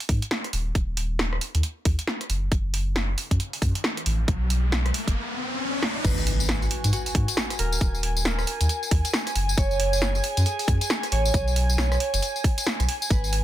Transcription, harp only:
0, 0, Header, 1, 2, 480
1, 0, Start_track
1, 0, Tempo, 441176
1, 818, Time_signature, 4, 2, 24, 8
1, 14622, End_track
2, 0, Start_track
2, 0, Title_t, "Harp"
2, 0, Program_c, 0, 46
2, 6577, Note_on_c, 0, 71, 99
2, 7204, Note_on_c, 0, 66, 96
2, 7532, Note_off_c, 0, 66, 0
2, 7536, Note_on_c, 0, 66, 96
2, 8258, Note_on_c, 0, 70, 98
2, 8323, Note_off_c, 0, 71, 0
2, 8974, Note_off_c, 0, 70, 0
2, 8978, Note_on_c, 0, 70, 100
2, 10187, Note_off_c, 0, 66, 0
2, 10420, Note_on_c, 0, 73, 100
2, 11045, Note_on_c, 0, 68, 95
2, 11286, Note_off_c, 0, 70, 0
2, 11374, Note_off_c, 0, 68, 0
2, 11378, Note_on_c, 0, 68, 96
2, 12096, Note_off_c, 0, 73, 0
2, 12100, Note_on_c, 0, 73, 98
2, 12815, Note_off_c, 0, 73, 0
2, 12819, Note_on_c, 0, 73, 98
2, 13852, Note_off_c, 0, 68, 0
2, 14259, Note_on_c, 0, 71, 96
2, 14622, Note_off_c, 0, 71, 0
2, 14622, Note_off_c, 0, 73, 0
2, 14622, End_track
0, 0, End_of_file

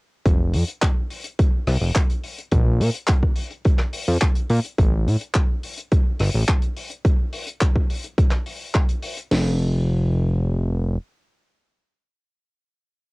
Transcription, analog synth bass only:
0, 0, Header, 1, 2, 480
1, 0, Start_track
1, 0, Key_signature, -1, "major"
1, 0, Tempo, 566038
1, 219, Time_signature, 4, 2, 24, 8
1, 11129, End_track
2, 0, Start_track
2, 0, Title_t, "Analog synth bass"
2, 0, Program_c, 0, 38
2, 218, Note_on_c, 0, 29, 94
2, 458, Note_on_c, 0, 41, 84
2, 471, Note_off_c, 0, 29, 0
2, 542, Note_off_c, 0, 41, 0
2, 1416, Note_on_c, 0, 36, 94
2, 1501, Note_off_c, 0, 36, 0
2, 1537, Note_on_c, 0, 29, 94
2, 1621, Note_off_c, 0, 29, 0
2, 2137, Note_on_c, 0, 34, 94
2, 2376, Note_on_c, 0, 46, 87
2, 2389, Note_off_c, 0, 34, 0
2, 2461, Note_off_c, 0, 46, 0
2, 3460, Note_on_c, 0, 41, 83
2, 3543, Note_off_c, 0, 41, 0
2, 3817, Note_on_c, 0, 46, 94
2, 3901, Note_off_c, 0, 46, 0
2, 4058, Note_on_c, 0, 33, 91
2, 4297, Note_on_c, 0, 45, 85
2, 4310, Note_off_c, 0, 33, 0
2, 4381, Note_off_c, 0, 45, 0
2, 5258, Note_on_c, 0, 31, 95
2, 5342, Note_off_c, 0, 31, 0
2, 5380, Note_on_c, 0, 33, 96
2, 5462, Note_off_c, 0, 33, 0
2, 7898, Note_on_c, 0, 29, 98
2, 9305, Note_off_c, 0, 29, 0
2, 11129, End_track
0, 0, End_of_file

